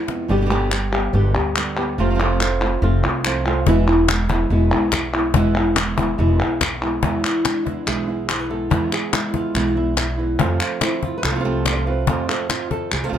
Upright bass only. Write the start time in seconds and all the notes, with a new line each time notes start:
0.29 G1
1.13 G1
1.35 D2
1.98 F1
2.82 F1
3.03 C2
3.66 E1
4.50 E1
4.72 B1
5.34 E1
6.19 E1
6.40 B1
7.03 E2
7.87 B1
8.70 E2
9.55 B1
10.39 F2
11.23 C2
12.08 F2
12.92 C2
13.12 C2